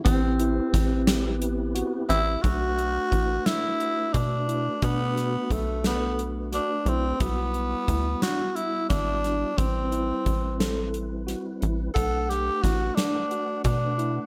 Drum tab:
HH |xxxxxxx|xxxxxxx|xxxxxxx|xxxxxxx|
SD |--oo--o|---o---|-o-o-o-|---o-oo|
BD |o-o----|o-o--o-|o-o----|o-o--o-|

HH |xxxxxxx|xxxxxxx|
SD |---o-o-|-ooo---|
BD |o-o----|o-o--o-|